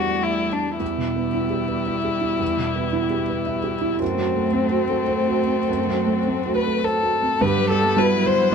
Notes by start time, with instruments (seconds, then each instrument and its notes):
Already playing: felt piano E2 A3 D4 G4 C5, cello G3, string section A3 G4 D5, violin F#4
0.23 violin E4
0.53 violin D4
0.80 felt piano E2, cello G3, string section B3 G4 B4, violin E4
0.97 felt piano B2
1.16 felt piano B3
1.34 felt piano E4
1.50 felt piano G4
1.68 felt piano B4
1.86 felt piano E5
2.05 felt piano G4
2.21 felt piano E4
2.39 felt piano E2
2.57 felt piano B2
2.76 felt piano B3
2.93 felt piano E4
3.10 felt piano G4
3.29 felt piano B4
3.46 felt piano E5
3.64 felt piano G4
3.81 felt piano E4
4.00 felt piano F#2, cello A3, violin C4, string section C4 F#4 A4
4.18 felt piano F#3
4.36 felt piano A3
4.53 felt piano C4
4.70 felt piano F#4
4.90 felt piano A4
5.08 felt piano C5
5.28 felt piano F#4
5.46 felt piano C4
5.68 felt piano F#2
5.87 felt piano F#3
6.06 felt piano A3
6.26 felt piano C4
6.46 felt piano F#4
6.55 felt piano B4, violin B4
6.65 felt piano A4
6.84 felt piano A4 C5, violin A4
7.03 felt piano F#4
7.22 felt piano C4
7.41 felt piano G2 B4, cello D3, string section B3 B4 F#5, viola G4, violin B4
7.56 cello F#3
7.70 cello G3, violin A4, felt piano A4
7.84 cello B3
7.97 felt piano G3 B3 F#4 B4, cello G3, viola E4, violin B4
8.11 cello F#3
8.25 cello D3, felt piano C5, violin C5
8.38 cello F#3
8.51 viola D4